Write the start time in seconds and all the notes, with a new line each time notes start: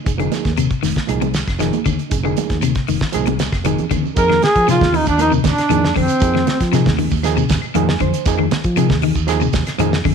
0.05 F1 D#4 G#4, kick, closed hi-hat, shekere
0.18 D3 F3 A#3 D#4 G#4, closed hi-hat, claves, shekere
0.32 snare, closed hi-hat, high conga, shekere
0.45 D#2, kick, snare, closed hi-hat, high conga, shekere
0.57 C3, closed hi-hat, claves, shekere
0.71 kick, closed hi-hat, shekere
0.83 F1 D#3, snare, open hi-hat, high conga, shekere
0.96 kick, snare, shekere
1.07 C2 F3 A#3 D#4 G#4, closed hi-hat, high conga, claves, shekere
1.21 C3, closed hi-hat, high conga, shekere
1.34 snare, closed hi-hat, shekere
1.47 F1, kick, snare, closed hi-hat, claves, shekere
1.59 D#3 F3 A#3 D#4 G#4, snare, closed hi-hat, shekere
1.72 closed hi-hat, high conga, shekere
1.86 D#2 D3, kick, closed hi-hat, high conga, claves, shekere
1.99 closed hi-hat, shekere
2.10 F1 D#4 G#4, kick, closed hi-hat, shekere
2.23 D3 F3 A#3 D#4 G#4, claves, shekere
2.37 closed hi-hat, high conga, shekere
2.50 D#2, kick, snare, closed hi-hat, high conga, shekere
2.62 C3, closed hi-hat, claves, shekere
2.75 kick, snare, closed hi-hat, shekere
2.88 F1 D#3, open hi-hat, high conga, shekere
3.00 kick, snare, closed hi-hat, shekere
3.13 C2 F3 A#3 D#4 G#4, closed hi-hat, high conga, claves, shekere
3.26 C3, closed hi-hat, high conga, shekere
3.39 snare, closed hi-hat, high conga, shekere
3.52 F1, kick, snare, claves, shekere
3.64 D#3 F3 A#3 D#4 G#4, closed hi-hat, high conga, shekere
3.78 closed hi-hat, low conga, shekere
3.91 D#2 D3, kick, closed hi-hat, low conga, claves, shekere
4.04 low conga, shekere
4.16 F2 F3 A#3 D#4 G#4 A#4, kick, closed hi-hat, shekere
4.29 D#3, snare, high conga, claves
4.42 G#4, snare, closed hi-hat, high conga
4.56 F3, kick, closed hi-hat, shekere
4.67 C3 F3 A#3 D#4 F4 G#4, snare, closed hi-hat, claves, shekere
4.81 D#2, kick, snare, high conga, low conga
4.93 D#3 D#4, open hi-hat, low conga, shekere
4.97 D#4
5.06 D#2 D4, kick, closed hi-hat, high conga, shekere
5.18 F3 A#3 D#4 A#4, closed hi-hat, high conga, claves, shekere
5.32 C3, shekere
5.44 D#2 D4, kick, snare, closed hi-hat, high conga, shekere
5.57 muted fingered electric bass stroke, snare, closed hi-hat, claves, shekere
5.69 F2 D#3 F3 A#3 D#4 G#4, closed hi-hat, high conga, shekere
5.85 snare
5.95 F2 D3 C4, kick, open hi-hat, low conga, claves, shekere
6.08 closed hi-hat, shekere
6.20 F2 F3 A#3 D#4 G#4, kick, closed hi-hat, shekere
6.34 D#3, snare, high conga, claves
6.47 snare, closed hi-hat, high conga
6.60 F3, kick, snare, closed hi-hat, shekere
6.72 C3 F3 A#3 D#4 G#4, snare, closed hi-hat, claves, shekere
6.85 D#2, kick, snare, high conga, low conga
6.98 D#3, open hi-hat, low conga, shekere
7.10 D#2, kick, high conga, shekere
7.23 F3 A#3 D#4 G#4, snare, closed hi-hat, high conga, claves, shekere
7.37 C3, shekere
7.49 D#2, kick, snare, closed hi-hat, high conga, shekere
7.62 muted fingered electric bass stroke, claves, shekere
7.74 F2 D#3 F3 A#3 D#4 G#4 G#5, closed hi-hat, high conga, shekere
7.89 snare
8.00 F2 D3 C5, kick, closed hi-hat, low conga, claves, shekere
8.13 closed hi-hat, shekere
8.26 F2 F3 A#3 D#4 G#4, kick, snare, closed hi-hat, shekere
8.38 D#3, high conga, claves
8.51 snare, closed hi-hat, high conga
8.64 F3, kick, closed hi-hat, shekere
8.76 C3 F3 A#3 D#4 G#4, closed hi-hat, claves, shekere
8.89 D#2, kick, snare, high conga, low conga
9.02 D#3, open hi-hat, low conga, shekere
9.15 D#2, kick, closed hi-hat, shekere
9.27 F3 A#3 D#4 G#4, snare, closed hi-hat, claves, shekere
9.41 C3, shekere
9.53 D#2, kick, snare, closed hi-hat, high conga, shekere
9.66 snare, closed hi-hat, claves, shekere
9.78 F2 D#3 F3 A#3 D#4 G#4, closed hi-hat, high conga, shekere
9.93 snare
10.04 F2 D3, kick, open hi-hat, low conga, claves, shekere